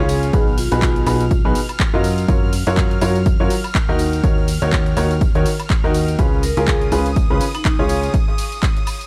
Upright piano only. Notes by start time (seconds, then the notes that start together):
0.00 C#3 C#4 F4 G#4 C#5
0.33 B2 D#4 F#4 G#4 B4
0.72 B2 D#4 F#4 G#4 B4
1.07 B2 D#4 F#4 G#4 B4
1.45 B2 D#4 F#4 G#4 B4
1.94 F#3 F4 F#4 A#4 D#5
2.29 F#3 F4 F#4 A#4 C#5
2.67 F#3 F4 F#4 A#4 C#5
3.02 F#3 F4 F#4 A#4 C#5
3.40 F#3 F4 F#4 A#4 C#5
3.89 D#3 D#4 F#4 A#4 D#5
4.24 D#3 D#4 F#4 A#4 C#5
4.62 D#3 D#4 F#4 A#4 C#5
4.97 D#3 D#4 F#4 A#4 C#5
5.35 D#3 D#4 F#4 A#4 C#5
5.84 D#3 D#4 F#4 A#4 D#5
6.19 C#3 C#4 F4 G#4 B4
6.57 C#3 C#4 F4 G#4 A#4
6.92 C#3 C#4 F4 G#4 B4
7.30 C#3 C#4 F4 G#4 B4
7.79 C#3 C#4 F4 G#4 C#5